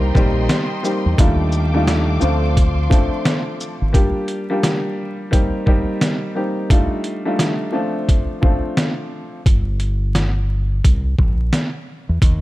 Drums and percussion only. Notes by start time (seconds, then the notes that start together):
0.15 kick, shaker
0.49 snare, closed hi-hat
0.85 shaker
1.18 kick, closed hi-hat
1.52 shaker
1.87 snare, closed hi-hat
2.21 shaker
2.57 kick, closed hi-hat
2.91 kick, closed hi-hat, shaker
3.25 snare, closed hi-hat
3.61 shaker
3.94 kick, closed hi-hat
4.28 closed hi-hat
4.63 snare, closed hi-hat
5.33 kick, closed hi-hat
5.67 kick
6.01 snare, closed hi-hat
6.70 kick, closed hi-hat
7.04 closed hi-hat
7.39 snare, closed hi-hat
8.09 kick, closed hi-hat
8.43 kick
8.77 snare, closed hi-hat
9.46 kick, closed hi-hat
9.80 closed hi-hat
10.15 snare, closed hi-hat
10.85 kick, closed hi-hat
11.19 kick
11.53 snare, closed hi-hat
12.22 kick, closed hi-hat